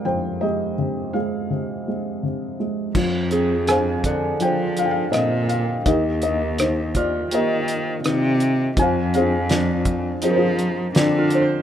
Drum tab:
CC |--------|x-------|--------|--------|
HH |--------|-xxxxxxx|xxxxxxxx|xxxxxxxx|
SD |--------|--r---r-|--r---r-|--o---o-|
BD |--------|o--o----|o--o----|o--o----|